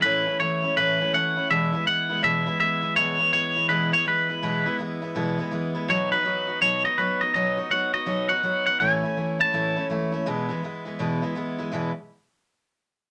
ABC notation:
X:1
M:4/4
L:1/8
Q:"Swing" 1/4=164
K:E
V:1 name="Clean electric guitar"
B2 c2 B2 f2 | e2 f2 e2 e2 | c2 c2 B c B2- | B2 z6 |
c B3 c d B d | d2 f d2 f2 f | g3 a3 z2 | z8 |
z8 |]
V:2 name="Steel-string acoustic guitar"
[A,,E,A,CE] [A,CE] [E,A,CE] [A,CE] [A,,E,A,CE] [A,CE] [E,A,CE] [A,CE] | [E,,B,,E,G,B,E] [E,G,B,E] [E,G,B,E] [E,G,B,E] [E,,B,,E,G,B,E] [E,G,B,E] [E,G,B,E] [E,G,B,E] | [E,,B,,E,G,B,E] [E,G,B,E] [E,G,B,E] [E,G,B,E] [E,,B,,E,G,B,E] [E,B,E] [E,G,B,E] [E,G,B,E] | [E,,B,,E,G,B,E] [E,G,B,E] [E,G,B,E] [E,G,B,E] [E,,B,,E,G,B,E] [E,G,B,E] [E,G,B,E] [E,G,B,E] |
[B,,F,B,DF] [B,DF] [F,B,DF] [B,DF] [B,,F,B,DF] [B,DF] [F,B,DF] [B,DF] | [B,,F,B,DF] [B,DF] [F,B,DF] [B,DF] [B,,F,B,DF] [B,DF] [F,B,DF] [B,DF] | [A,,E,A,CE] [A,CE] [E,A,CE] [A,CE] [A,,E,A,CE] [A,CE] [E,A,CE] [A,CE] | [E,,B,,E,G,B,E] [E,G,B,E] [E,G,B,E] [E,G,B,E] [E,,B,,E,G,B,E] [E,G,B,E] [E,G,B,E] [E,G,B,E] |
[E,,B,,E,G,B,E] z6 z |]